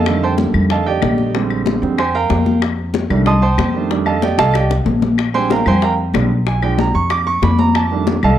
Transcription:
Already playing: upright bass F2, grand piano A4 D#5 F5 A5
0.06 grand piano D3 D#3 G3 A3, high bongo, high conga, claves
0.22 grand piano C5 G5 A5 C6, high conga
0.38 high bongo, high conga
0.54 upright bass F2, high conga, low conga, claves
0.70 grand piano A4 D#5 F5 A5, high bongo, high conga
0.86 grand piano G4 D5 D#5 G5, high conga
1.02 upright bass A#1, high bongo, low bongo, high conga, claves
1.18 high conga
1.34 grand piano D3 G3 G#3 C4, high bongo, high conga
1.50 high bongo, high conga, claves
1.66 high bongo, high conga
1.82 upright bass F2, grand piano D3 G3 G#3 C4, high bongo
1.97 grand piano C5 G5 G#5 C6, high bongo, high conga, claves
2.14 grand piano A#4 F5 G5 A#5, high conga
2.30 upright bass F2, high bongo, low bongo, high conga
2.46 high bongo, high conga
2.62 high bongo, high conga, claves
2.78 high conga
2.94 high bongo, high conga
3.10 upright bass C2, grand piano D#3 G3 A3 D4, high conga, low conga, claves
3.26 grand piano D#5 A5 C6 D#6, high bongo, high conga, low conga
3.42 grand piano C5 G5 A5 C6, high conga
3.58 upright bass F2, high bongo, low bongo, high conga, claves
3.74 grand piano D#3 G3 A3 D4
3.90 grand piano D#3 G3 A3 D4, high bongo, high conga
4.06 grand piano A4 D#5 F5 A5, high bongo, high conga, claves
4.22 grand piano G4 D5 D#5 G5, high bongo, high conga
4.38 upright bass C2, grand piano A4 D#5 F5 A5, high bongo
4.54 grand piano G4 D5 D#5 G5, high bongo, high conga, claves
4.70 low bongo, high conga
4.86 upright bass A#1, low bongo, high conga
5.02 low bongo, high conga
5.18 high bongo, high conga, claves
5.34 grand piano G3 G#3 C4 D4 C5 G5 G#5 C6, high conga
5.50 grand piano A#4 F5 G5 A#5, high bongo, high conga
5.66 upright bass F2, grand piano C5 G5 G#5 C6, high conga, low conga, claves
5.82 grand piano A#4 F5 G5 A#5, high bongo, high conga
5.98 high conga
6.14 upright bass B1, grand piano G3 G#3 C4 D4, high bongo, low bongo, high conga, claves
6.46 grand piano G#5, high bongo, high conga
6.62 grand piano F3 G#3 D4 G5, high bongo, high conga, claves
6.79 grand piano A#5, high bongo, high conga
6.94 upright bass F2, grand piano C#6, high bongo
7.10 grand piano D6, high bongo, high conga, claves
7.26 grand piano C#6, high conga
7.42 upright bass F2, grand piano B5, high bongo, low bongo, high conga
7.59 grand piano A#5, high bongo, high conga
7.75 grand piano A5, high bongo, high conga, claves
7.91 grand piano D#3 G3 A3 D4, high conga
8.07 high bongo, high conga
8.23 upright bass C2, grand piano A4 D#5 F5 A5, high conga, low conga, claves

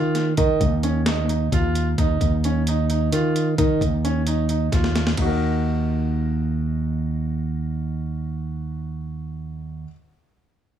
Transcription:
Already playing: fingered electric bass D#3, grand piano F4
0.15 snare, closed hi-hat
0.37 fingered electric bass D#3, grand piano D#4, kick, closed hi-hat
0.61 fingered electric bass D#2, kick, closed hi-hat
0.83 grand piano C#4, closed hi-hat
1.06 grand piano D#4, snare, closed hi-hat
1.29 grand piano D#4, closed hi-hat
1.52 fingered electric bass D#2, grand piano F4, kick, closed hi-hat
1.75 closed hi-hat
1.98 fingered electric bass D#2, grand piano D#4, kick, closed hi-hat
2.21 fingered electric bass D#2, kick, closed hi-hat
2.44 grand piano C#4, closed hi-hat
2.67 grand piano D#4, closed hi-hat
2.90 grand piano D#4, closed hi-hat
3.12 fingered electric bass D#3, grand piano F4, closed hi-hat
3.36 closed hi-hat
3.58 fingered electric bass D#3, grand piano D#4, kick, closed hi-hat
3.81 fingered electric bass D#2, kick, closed hi-hat
4.05 grand piano C#4, closed hi-hat
4.27 grand piano D#4, closed hi-hat
4.49 grand piano D#4, closed hi-hat
4.72 fingered electric bass D#2, grand piano F4, kick, snare, closed hi-hat
4.84 snare
4.96 snare, closed hi-hat
5.07 snare
5.17 fingered electric bass D#2, grand piano D#4, kick, ride
5.22 grand piano F#4
5.26 grand piano A#4
5.30 grand piano D#5

